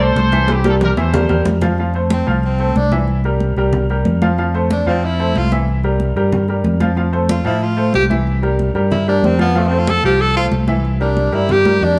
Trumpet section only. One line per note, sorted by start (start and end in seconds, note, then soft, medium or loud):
0.02 0.50 A4 medium
0.02 0.49 C5 loud
0.51 0.66 E4 medium
0.51 0.66 G4 loud
0.68 0.75 F4 medium
0.68 0.75 A4 medium
0.83 0.90 G4 medium
0.83 0.90 A#4 medium
0.99 1.44 A4 medium
0.99 1.44 C5 medium